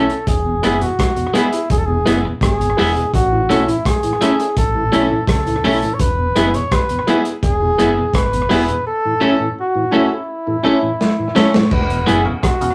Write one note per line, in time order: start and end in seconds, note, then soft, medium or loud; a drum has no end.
0.00 0.29 A4 medium
0.10 muted clean electric guitar stroke soft
0.10 closed hi-hat soft
0.27 0.62 E1 loud
0.27 0.83 G#4 medium
0.27 kick loud
0.27 closed hi-hat medium
0.45 0.55 E2 medium
0.45 0.55 B2 soft
0.62 0.81 F#1 medium
0.62 0.73 G#3 medium
0.62 0.75 G#3 medium
0.62 0.73 B3 medium
0.62 0.77 B3 medium
0.62 0.76 B3 medium
0.62 0.73 E4 medium
0.62 0.77 E4 medium
0.62 0.76 E4 medium
0.62 0.77 G#4 medium
0.62 closed hi-hat medium
0.80 0.90 E2 medium
0.80 0.90 B2 medium
0.80 1.36 F#4 medium
0.80 closed hi-hat soft
0.99 kick loud
0.99 cross-stick loud
0.99 closed hi-hat medium
1.16 1.26 E2 medium
1.16 1.27 B2 medium
1.16 closed hi-hat soft
1.33 1.44 G#3 medium
1.33 1.46 G#3 medium
1.33 1.48 B3 medium
1.33 1.44 B3 medium
1.33 1.47 B3 medium
1.33 1.44 E4 medium
1.33 1.49 E4 medium
1.33 1.70 E4 medium
1.33 1.47 E4 medium
1.33 1.49 G#4 loud
1.33 closed hi-hat medium
1.53 1.60 E4 soft
1.53 1.60 G#4 soft
1.53 closed hi-hat medium
1.70 2.05 E1 medium
1.70 1.80 G#4 medium
1.70 kick loud
1.70 closed hi-hat medium
1.78 1.87 A4 medium
1.86 1.98 E2 medium
1.86 1.98 B2 medium
1.86 1.95 E4 soft
1.86 2.16 G#4 medium
1.86 1.95 G#4 soft
2.05 2.24 F#1 medium
2.05 2.16 G#3 medium
2.05 2.18 G#3 medium
2.05 2.20 B3 medium
2.05 2.16 B3 medium
2.05 2.19 B3 medium
2.05 2.16 E4 medium
2.05 2.20 E4 medium
2.05 2.19 E4 medium
2.05 2.20 G#4 medium
2.05 closed hi-hat medium
2.24 2.34 E2 medium
2.24 2.34 B2 medium
2.24 muted clean electric guitar stroke soft
2.41 2.76 G#1 medium
2.41 3.10 G#4 medium
2.41 kick loud
2.41 cross-stick loud
2.41 closed hi-hat medium
2.60 2.70 E2 medium
2.60 2.70 B2 medium
2.60 closed hi-hat soft
2.77 2.96 E1 medium
2.77 2.88 G#3 medium
2.77 2.90 G#3 medium
2.77 2.91 B3 medium
2.77 2.88 B3 medium
2.77 2.91 B3 medium
2.77 2.92 E4 medium
2.77 2.88 E4 medium
2.77 2.91 E4 loud
2.77 2.92 G#4 loud
2.77 open hi-hat medium
2.96 3.06 E2 medium
2.96 3.06 B2 medium
2.96 closed hi-hat soft
3.14 3.48 A1 loud
3.14 3.69 F#4 medium
3.14 kick loud
3.14 closed hi-hat medium
3.32 3.41 A2 medium
3.32 3.41 E3 medium
3.49 3.67 B1 medium
3.49 3.61 A3 medium
3.49 3.59 A3 medium
3.49 3.63 C#4 medium
3.49 3.60 C#4 medium
3.49 3.62 C#4 medium
3.49 3.63 E4 medium
3.49 3.60 E4 medium
3.49 3.62 E4 medium
3.49 3.64 A4 medium
3.49 closed hi-hat medium
3.67 3.77 A2 medium
3.67 3.77 E3 medium
3.67 3.89 E4 medium
3.67 closed hi-hat soft
3.85 4.58 G#4 loud
3.85 kick loud
3.85 cross-stick loud
3.85 closed hi-hat medium
4.03 4.13 A2 medium
4.03 4.13 E3 medium
4.03 closed hi-hat soft
4.21 4.31 A3 medium
4.21 4.33 A3 medium
4.21 4.35 C#4 medium
4.21 4.31 C#4 medium
4.21 4.34 C#4 medium
4.21 4.31 E4 medium
4.21 4.35 E4 medium
4.21 4.34 E4 medium
4.21 4.35 A4 medium
4.21 closed hi-hat medium
4.39 4.46 E4 soft
4.39 4.46 A4 soft
4.39 closed hi-hat medium
4.57 4.91 A1 medium
4.57 5.25 A4 loud
4.57 kick loud
4.57 closed hi-hat medium
4.75 4.84 A2 medium
4.75 4.84 E3 medium
4.75 4.82 E4 soft
4.75 4.82 A4 soft
4.92 5.02 A3 medium
4.92 5.04 A3 medium
4.92 5.06 C#4 medium
4.92 5.02 C#4 medium
4.92 5.05 C#4 medium
4.92 5.06 E4 medium
4.92 5.02 E4 medium
4.92 5.05 E4 medium
4.92 5.07 A4 medium
4.92 closed hi-hat medium
5.10 5.20 A2 soft
5.10 5.20 E3 soft
5.10 muted clean electric guitar stroke soft
5.27 5.62 C#2 medium
5.27 5.96 A4 loud
5.27 kick loud
5.27 cross-stick loud
5.27 closed hi-hat medium
5.47 5.56 A2 medium
5.47 5.56 E3 medium
5.47 closed hi-hat soft
5.64 5.82 B1 medium
5.64 5.74 A3 medium
5.64 5.76 A3 medium
5.64 5.78 C#4 medium
5.64 5.74 C#4 medium
5.64 5.77 C#4 medium
5.64 5.74 E4 medium
5.64 5.78 E4 medium
5.64 5.77 E4 loud
5.64 5.78 A4 medium
5.64 open hi-hat medium
5.82 5.92 A2 medium
5.82 5.92 E3 medium
5.82 closed hi-hat soft
5.94 6.02 C#5 medium
5.99 6.34 E1 medium
5.99 6.57 B4 loud
5.99 kick loud
5.99 closed hi-hat medium
6.19 6.28 E2 medium
6.19 6.28 B2 medium
6.35 6.53 F#1 medium
6.35 6.48 G#3 medium
6.35 6.46 G#3 medium
6.35 6.49 B3 medium
6.35 6.46 B3 medium
6.35 6.48 B3 medium
6.35 6.50 E4 medium
6.35 6.46 E4 medium
6.35 6.49 E4 medium
6.35 6.50 G#4 medium
6.35 closed hi-hat medium
6.54 6.64 E2 medium
6.54 6.64 B2 medium
6.54 6.75 C#5 loud
6.54 closed hi-hat medium
6.72 7.17 B4 loud
6.72 kick loud
6.72 cross-stick loud
6.72 closed hi-hat medium
6.89 7.00 E2 medium
6.89 7.00 B2 medium
6.89 closed hi-hat soft
7.07 7.19 G#3 medium
7.07 7.18 G#3 medium
7.07 7.21 B3 medium
7.07 7.20 B3 medium
7.07 7.18 B3 medium
7.07 7.21 E4 medium
7.07 7.18 E4 medium
7.07 7.20 E4 medium
7.07 7.21 G#4 loud
7.07 closed hi-hat medium
7.25 7.32 E4 soft
7.25 7.32 G#4 soft
7.25 closed hi-hat medium
7.43 7.77 E1 medium
7.43 8.11 G#4 loud
7.43 kick loud
7.43 closed hi-hat medium
7.61 7.71 E2 medium
7.61 7.71 B2 medium
7.61 7.68 E4 soft
7.61 7.68 G#4 soft
7.78 7.96 F#1 medium
7.78 7.91 G#3 medium
7.78 7.89 G#3 medium
7.78 7.92 B3 medium
7.78 7.91 B3 medium
7.78 7.90 B3 medium
7.78 7.92 E4 medium
7.78 7.90 E4 medium
7.78 7.92 E4 medium
7.78 7.93 G#4 medium
7.78 closed hi-hat medium
7.97 8.07 E2 medium
7.97 8.07 B2 medium
7.97 muted clean electric guitar stroke soft
8.14 8.48 G#1 medium
8.14 8.83 B4 loud
8.14 kick loud
8.14 cross-stick loud
8.14 closed hi-hat medium
8.33 8.43 E2 medium
8.33 8.43 B2 medium
8.33 closed hi-hat soft
8.49 8.68 E1 medium
8.49 8.62 G#3 medium
8.49 8.61 G#3 medium
8.49 8.64 B3 medium
8.49 8.63 B3 loud
8.49 8.61 B3 medium
8.49 8.64 E4 medium
8.49 8.63 E4 loud
8.49 8.61 E4 medium
8.49 8.64 G#4 loud
8.49 open hi-hat medium
8.68 8.79 E2 medium
8.68 8.79 B2 medium
8.68 closed hi-hat soft
8.87 9.54 A4 loud
9.05 9.14 A2 medium
9.05 9.14 E3 medium
9.21 9.33 A3 medium
9.21 9.32 A3 medium
9.21 9.35 C#4 medium
9.21 9.34 C#4 medium
9.21 9.32 C#4 medium
9.21 9.35 E4 medium
9.21 9.34 E4 loud
9.21 9.32 E4 medium
9.21 9.36 A4 medium
9.40 9.49 A2 medium
9.40 9.49 E3 medium
9.61 10.09 F#4 medium
9.75 9.85 A2 medium
9.75 9.85 E3 medium
9.91 10.05 A3 medium
9.91 10.03 A3 medium
9.91 10.06 C#4 medium
9.91 10.03 C#4 medium
9.91 10.06 C#4 loud
9.91 10.07 E4 medium
9.91 10.03 E4 medium
9.91 10.06 E4 loud
9.91 10.07 A4 medium
10.11 10.18 E4 soft
10.11 11.34 E4 medium
10.11 10.18 A4 soft
10.47 10.57 A2 medium
10.47 10.57 E3 medium
10.47 10.54 E4 soft
10.47 10.54 A4 soft
10.63 10.77 A3 medium
10.63 10.75 A3 medium
10.63 10.78 C#4 medium
10.63 10.77 C#4 medium
10.63 10.75 C#4 medium
10.63 10.78 E4 medium
10.63 10.77 E4 medium
10.63 10.75 E4 medium
10.63 10.78 A4 medium
10.82 10.92 A2 medium
10.82 10.92 E3 soft
11.01 snare medium
11.19 11.28 A2 medium
11.19 11.29 E3 medium
11.35 11.48 A3 medium
11.35 11.46 A3 medium
11.35 11.49 C#4 medium
11.35 11.48 C#4 loud
11.35 11.46 C#4 medium
11.35 11.50 E4 medium
11.35 11.46 E4 medium
11.35 11.49 E4 loud
11.35 11.50 A4 medium
11.35 11.74 C#5 loud
11.35 snare medium
11.54 11.64 A2 medium
11.54 11.64 E3 medium
11.54 snare medium
11.71 12.06 E1 loud
11.71 12.08 B4 loud
11.71 kick loud
11.71 crash medium
11.90 12.00 E2 medium
11.90 12.00 B2 medium
11.90 closed hi-hat soft
12.06 12.26 F#1 medium
12.06 12.19 E3 medium
12.06 12.19 G#3 medium
12.06 12.18 G#3 medium
12.06 12.21 B3 medium
12.06 12.20 B3 loud
12.06 12.18 B3 medium
12.06 12.21 E4 medium
12.06 12.20 E4 medium
12.06 12.18 E4 medium
12.06 12.22 G#4 medium
12.06 12.24 G#4 medium
12.06 closed hi-hat medium
12.25 12.36 E2 medium
12.25 12.36 B2 medium
12.25 12.37 C#3 medium
12.43 12.55 B2 medium
12.43 12.75 F#4 loud
12.43 kick loud
12.43 cross-stick loud
12.43 closed hi-hat medium
12.61 12.72 E2 medium
12.61 12.72 B2 medium
12.61 12.73 C#3 medium
12.61 closed hi-hat medium